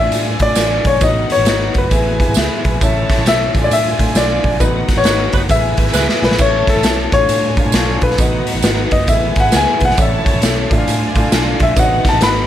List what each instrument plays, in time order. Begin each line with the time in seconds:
Already playing: upright piano A2 A3 D4 F4 D5, violin section F4 D5 G#5, grand piano E5
0.11 picked electric bass A2, closed hi-hat, tambourine
0.39 picked electric bass A2, upright piano A3 D4 F4 D5, grand piano D5, kick, closed hi-hat
0.55 picked electric bass A1, upright piano A3 D4 F4 C#5, snare, closed hi-hat, tambourine
0.63 upright piano D5
0.85 picked electric bass A#1, grand piano C#5, kick, closed hi-hat
1.00 picked electric bass A1, upright piano A2 B3 D#4 F#4 C#5, violin section D#4 B4 F#5, grand piano D#5, kick, closed hi-hat, tambourine
1.08 upright piano D#5
1.30 grand piano C#5, closed hi-hat
1.38 picked electric bass A1
1.45 picked electric bass G#1, upright piano B3 D#4 F#4 D#5, snare, closed hi-hat, tambourine
1.74 picked electric bass F#1, grand piano B4, kick, closed hi-hat
1.90 picked electric bass A1, upright piano A2 B3 E4 G#4 E5, violin section E4 B4 G#5, kick, closed hi-hat, tambourine
2.19 upright piano B3 E4 G#4 E5, kick, closed hi-hat
2.28 picked electric bass G#1
2.34 picked electric bass C#2, upright piano B3 E4 G#4 E5, snare, closed hi-hat, tambourine
2.65 picked electric bass B1, kick, closed hi-hat
2.72 picked electric bass A#1
2.81 picked electric bass A1, upright piano A2 C#4 E4 A4 E5, violin section E4 C#5 A5, kick, closed hi-hat, tambourine
3.10 kick, snare, closed hi-hat
3.17 picked electric bass A1
3.25 picked electric bass B1, upright piano C#4 A4 E5, grand piano E5, snare, closed hi-hat, tambourine
3.54 picked electric bass A1, upright piano A2 A3 D4 E4 D5, violin section F4 D5 G#5, kick, closed hi-hat
3.60 upright piano F4, grand piano D5
3.70 picked electric bass A2, grand piano E5, closed hi-hat, tambourine
3.99 picked electric bass A2, upright piano A3 D4 F4 D5, kick, closed hi-hat
4.15 picked electric bass B1, upright piano A3 D4 F4 D5, grand piano D5, snare, closed hi-hat, tambourine
4.44 picked electric bass A#1, kick, open hi-hat
4.60 picked electric bass A1, upright piano A2 B3 D#4 F#4 D#5, violin section D#4 B4 F#5, grand piano B4, kick, closed hi-hat, tambourine
4.88 kick, snare, closed hi-hat
4.97 picked electric bass A1, grand piano C#5
5.04 picked electric bass G#1, saxophone section F#3 D#4 B4, upright piano B3 D#4 F#4 D#5, snare, closed hi-hat, tambourine
5.33 picked electric bass F#1, saxophone section F#3 D#4 B4, kick, closed hi-hat
5.48 picked electric bass A1, upright piano A2 B3 E4 G#4 E5, violin section E4 B4 G#5, grand piano E5, kick, closed hi-hat, tambourine
5.77 picked electric bass G#1, saxophone section G#3 E4 B4, upright piano B3 E4 G#4 E5, kick, closed hi-hat
5.93 picked electric bass C#2, saxophone section G#3 E4 B4, upright piano B3 E4 G#4 E5, snare, tambourine
6.09 snare
6.22 picked electric bass B1, grand piano B4, snare
6.31 picked electric bass A#1, snare
6.38 picked electric bass A1, upright piano A2 C#4 E4 A4 E5, violin section E4 C#5 A5, grand piano C#5, kick, tambourine, splash
6.67 grand piano A4, kick, snare, closed hi-hat
6.76 picked electric bass A1
6.83 picked electric bass B1, upright piano C#4 E4 A4 E5, snare, closed hi-hat, tambourine
7.11 picked electric bass A1, upright piano A2 D4 F4 A4 F5, violin section D4 F4 G#5, grand piano C#5, kick, closed hi-hat
7.29 picked electric bass A2, closed hi-hat, tambourine
7.57 upright piano D4 F4 A4 F5, kick, closed hi-hat
7.65 picked electric bass A2
7.72 picked electric bass B1, upright piano D4 F4 A4 F5, snare, closed hi-hat, tambourine
8.01 picked electric bass A#1, grand piano B4, kick, closed hi-hat
8.11 snare
8.18 picked electric bass A1, upright piano A2 B3 D#4 F#4 D#5, violin section D#4 B4 F#5, kick, closed hi-hat, tambourine
8.47 closed hi-hat
8.55 picked electric bass A1
8.62 picked electric bass G#1, upright piano B3 D#4 F#4 D#5, snare, closed hi-hat, tambourine
8.91 picked electric bass F#1, grand piano D#5, kick, closed hi-hat
9.08 picked electric bass A1, upright piano A2 B3 E4 G#4 E5, violin section E4 B4 G#5, grand piano E5, kick, closed hi-hat, tambourine
9.36 picked electric bass G#1, upright piano B3 E4 G#4 E5, kick, closed hi-hat
9.40 grand piano F#5
9.52 picked electric bass C#2, upright piano B3 E4 G#4 E5, snare, closed hi-hat, tambourine
9.57 grand piano G#5
9.80 picked electric bass B1, kick, closed hi-hat
9.85 grand piano F#5
9.90 picked electric bass A#1, snare
9.97 picked electric bass A1, upright piano A2 C#4 E4 A4 D5, violin section E4 C#5 A5, kick, closed hi-hat, tambourine
10.01 grand piano E5, upright piano E5
10.26 kick, closed hi-hat
10.34 picked electric bass A1
10.42 picked electric bass B1, upright piano C#4 E4 A4 E5, snare, closed hi-hat, tambourine
10.70 picked electric bass A1, upright piano A2 D4 F4 A4 E5, violin section F4 D5 G#5, kick, closed hi-hat
10.77 upright piano F5
10.88 picked electric bass A2, closed hi-hat, tambourine
11.15 picked electric bass A2, upright piano D4 F4 A4 F5, kick, closed hi-hat
11.31 picked electric bass B1, upright piano D4 F4 A4 F5, snare, closed hi-hat, tambourine
11.60 picked electric bass A#1, grand piano E5, kick, closed hi-hat
11.76 picked electric bass A1, upright piano A2 B3 D#4 F#4 C#5, violin section D#4 B4 F#5, grand piano F#5, kick, closed hi-hat, tambourine
11.83 upright piano D#5
12.05 kick, snare, closed hi-hat
12.09 grand piano A5
12.13 picked electric bass A1
12.20 picked electric bass G#1, saxophone section F#3 D#4 B4, upright piano B3 D#4 F#4 D#5, grand piano B5, snare, closed hi-hat, tambourine